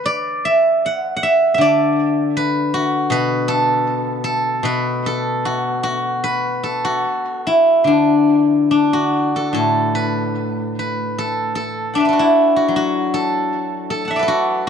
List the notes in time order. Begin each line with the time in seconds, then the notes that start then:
Already playing: B4
0.06 D5
0.45 E5
0.86 F#5
1.16 F#5
1.23 E5
1.54 D3 E5
1.61 D5
2.37 B4
2.74 F#4
3.10 B2 B4
3.48 A4
4.24 A4
4.63 B2 B4
5.06 A4
5.45 F#4
5.83 F#4
6.24 B4
6.63 A4
6.85 F#4
7.47 E4
7.84 D3 D4
8.71 D4
8.93 F#4
9.36 A4
9.53 A2 A4
9.95 B4
10.79 B4
11.18 A4
11.55 A4
11.94 D4 E5 F#5
12.00 D5
12.05 A4 B4
12.13 F#4
12.19 E4
12.56 F#4
12.68 F#3
12.76 F#4
13.14 A4
13.90 A4
14.05 F#5 A5
14.11 E5
14.16 B4 D5
14.23 A4
14.28 F#4